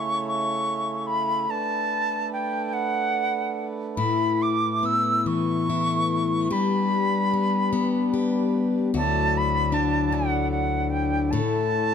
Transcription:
0.00 1.46 C#3 medium
0.00 6.46 A3 medium
0.00 1.46 E4 medium
0.00 1.46 C#5 medium
0.00 0.27 C#6 medium
0.28 1.08 C#6 medium
1.07 1.52 B5 medium
1.49 3.96 D4 medium
1.49 8.89 B4 medium
1.49 2.31 A5 medium
2.33 2.75 G5 medium
2.73 3.67 F#5 medium
3.96 6.50 A2 medium
3.96 5.68 E4 medium
3.96 4.44 B5 medium
4.01 6.49 E4 medium
4.42 4.87 D6 medium
4.83 7.33 B3 soft
4.83 5.29 E6 medium
5.26 6.50 E3 soft
5.26 6.54 C#6 medium
5.70 6.51 E4 medium
6.51 8.92 G3 medium
6.51 8.91 G3 medium
6.51 8.90 D4 medium
6.51 8.12 G4 medium
6.51 8.54 B5 medium
7.33 7.71 B3 soft
7.73 9.01 B3 medium
8.14 8.93 G4 medium
8.94 11.33 D2 medium
8.94 11.30 F#3 medium
8.94 11.94 E4 medium
8.94 10.53 F#4 medium
8.94 11.31 D5 medium
8.94 9.39 A5 loud
9.37 9.75 B5 loud
9.72 11.40 D4 soft
9.72 10.16 A5 medium
10.12 11.40 D3 medium
10.12 10.51 F#5 medium
10.51 10.91 F#5 medium
10.90 11.32 G5 medium
11.31 11.94 A2 medium
11.31 11.94 A3 medium
11.31 11.94 A4 medium
11.31 11.94 C#5 medium
11.31 11.94 A5 medium

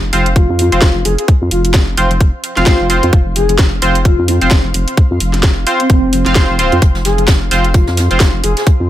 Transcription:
0.00 0.11 F1 medium
0.00 8.90 C4 medium
0.00 8.90 F4 medium
0.00 8.90 F5 medium
0.00 8.90 C6 medium
0.13 0.47 F1 medium
0.13 0.26 C4 medium
0.13 0.26 F4 medium
0.13 0.26 C5 loud
0.13 open hi-hat loud
0.26 closed hi-hat medium
0.36 1.01 F4 medium
0.36 kick loud
0.36 closed hi-hat medium
0.49 0.70 F2 medium
0.59 open hi-hat loud
0.72 0.80 F1 medium
0.72 0.82 C4 medium
0.72 0.82 F4 medium
0.72 0.82 C5 medium
0.72 closed hi-hat medium
0.82 1.04 F1 medium
0.82 kick loud
0.82 snare loud
0.82 closed hi-hat medium
1.05 1.16 F1 medium
1.05 1.14 G#4 medium
1.05 open hi-hat loud
1.18 1.25 G#4 medium
1.18 closed hi-hat medium
1.28 kick loud
1.28 closed hi-hat medium
1.42 1.50 F2 medium
1.51 1.96 F1 medium
1.51 1.60 F4 medium
1.51 open hi-hat loud
1.65 1.71 F4 medium
1.65 closed hi-hat soft
1.74 kick loud
1.74 snare loud
1.74 closed hi-hat medium
1.97 2.32 F1 medium
1.97 2.10 C4 medium
1.97 2.10 F4 medium
1.97 2.10 C5 loud
1.97 open hi-hat loud
2.11 closed hi-hat medium
2.21 kick loud
2.21 closed hi-hat medium
2.44 open hi-hat loud
2.56 2.65 F1 medium
2.56 2.64 C4 medium
2.56 2.64 F4 medium
2.56 3.21 F4 loud
2.56 2.64 F5 loud
2.56 snare soft
2.56 closed hi-hat soft
2.66 2.78 G#1 loud
2.66 2.86 C5 loud
2.66 kick loud
2.66 snare loud
2.66 closed hi-hat medium
2.80 3.01 F1 medium
2.90 3.09 C4 medium
2.90 3.09 F4 medium
2.90 3.09 C5 loud
2.90 open hi-hat loud
3.03 3.11 F2 medium
3.03 closed hi-hat soft
3.13 3.57 F1 loud
3.13 kick loud
3.13 closed hi-hat medium
3.36 3.55 G#4 medium
3.36 open hi-hat loud
3.49 closed hi-hat soft
3.58 3.81 F1 medium
3.58 kick loud
3.58 snare loud
3.58 closed hi-hat medium
3.82 4.16 F1 medium
3.82 3.95 C4 medium
3.82 3.95 F4 medium
3.82 3.95 C5 loud
3.82 open hi-hat loud
3.95 closed hi-hat soft
4.05 4.28 F4 medium
4.05 kick loud
4.05 closed hi-hat medium
4.18 4.39 F2 medium
4.28 4.37 C4 medium
4.28 open hi-hat loud
4.41 4.50 F1 medium
4.41 4.48 C4 medium
4.41 4.51 C4 medium
4.41 4.51 F4 medium
4.41 4.51 C5 medium
4.41 closed hi-hat soft
4.51 4.73 F1 medium
4.51 kick loud
4.51 snare loud
4.51 closed hi-hat medium
4.74 4.86 F1 medium
4.74 open hi-hat loud
4.88 closed hi-hat soft
4.97 kick loud
4.97 closed hi-hat medium
5.11 5.19 F2 loud
5.20 5.65 F1 loud
5.20 open hi-hat loud
5.33 snare soft
5.33 closed hi-hat soft
5.43 kick loud
5.43 snare loud
5.43 closed hi-hat medium
5.67 5.80 C4 medium
5.67 5.80 F4 medium
5.67 5.80 C5 loud
5.67 open hi-hat loud
5.80 5.88 C4 medium
5.80 closed hi-hat soft
5.90 6.24 F1 loud
5.90 6.26 C4 medium
5.90 kick loud
5.90 closed hi-hat medium
6.13 open hi-hat loud
6.26 6.70 F1 medium
6.26 6.34 C4 medium
6.26 6.34 F4 medium
6.26 6.34 F5 loud
6.26 snare soft
6.26 closed hi-hat soft
6.35 6.55 C4 medium
6.35 6.55 F4 medium
6.35 6.55 C5 loud
6.35 kick loud
6.35 snare loud
6.35 closed hi-hat medium
6.59 6.78 C4 medium
6.59 6.78 F4 medium
6.59 6.78 C5 loud
6.59 open hi-hat loud
6.72 6.80 F2 medium
6.72 closed hi-hat soft
6.82 7.27 F1 loud
6.82 kick loud
6.82 closed hi-hat medium
6.95 snare soft
7.05 7.24 G#4 medium
7.05 snare soft
7.05 closed hi-hat medium
7.05 open hi-hat loud
7.18 closed hi-hat soft
7.28 7.50 F1 medium
7.28 kick loud
7.28 snare loud
7.28 closed hi-hat medium
7.51 7.86 F1 loud
7.51 7.64 C4 medium
7.51 7.64 F4 medium
7.51 7.64 C5 loud
7.51 closed hi-hat medium
7.51 open hi-hat loud
7.64 closed hi-hat soft
7.74 8.40 F4 loud
7.74 kick loud
7.74 closed hi-hat medium
7.87 8.09 F2 loud
7.87 snare medium
7.97 snare soft
7.97 closed hi-hat medium
7.97 open hi-hat loud
8.11 8.19 F1 medium
8.11 8.20 C4 medium
8.11 8.20 F4 medium
8.11 8.20 C5 medium
8.11 closed hi-hat soft
8.20 8.42 F1 medium
8.20 kick loud
8.20 snare loud
8.20 closed hi-hat medium
8.43 8.55 F1 medium
8.43 8.52 G#4 medium
8.43 closed hi-hat medium
8.43 open hi-hat loud
8.57 8.63 G#4 medium
8.57 snare soft
8.57 closed hi-hat soft
8.67 kick loud
8.67 closed hi-hat medium
8.80 8.88 F2 loud

